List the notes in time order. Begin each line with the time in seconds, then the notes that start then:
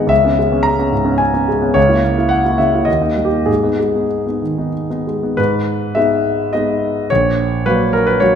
Already playing: D#3 G#3 B3 D#4 D#5 F#5 G#5
0.07 C#2 E5
0.24 B3 C#4
0.39 G#3
0.52 B3 C#4
0.63 A#5
0.79 B3 C#4
0.92 G#2
1.05 B3 C#4
1.18 G#5
1.34 B3 C#4
1.48 G#3
1.62 B3 C#4
1.74 C#2 C#5
1.89 A#3 E4
2.04 A#3
2.18 A#3 E4
2.29 F#5
2.45 A#3 E4
2.58 C#3 E5
2.74 A#3 E4
2.85 D#2 D#5
3.01 A#3 D#4
3.16 G3
3.25 G4
3.32 A#3 D#4
3.46 G#2 G#4
3.63 B3 D#4
3.79 G#3
3.96 B3 D#4
4.26 B3 D#4
4.42 D#3
4.58 B3 D#4
4.90 B3 D#4
5.07 G#3
5.23 B3 D#4
5.37 G#2 B4
5.95 G#3 B3 D#4 E5
6.53 G#3 B3 D#4 D#5
7.10 A#1 C#5
7.66 F#3 A#3 F#4 B4
7.93 A#4
8.07 B4
8.20 F#3 A#3 F#4 C#5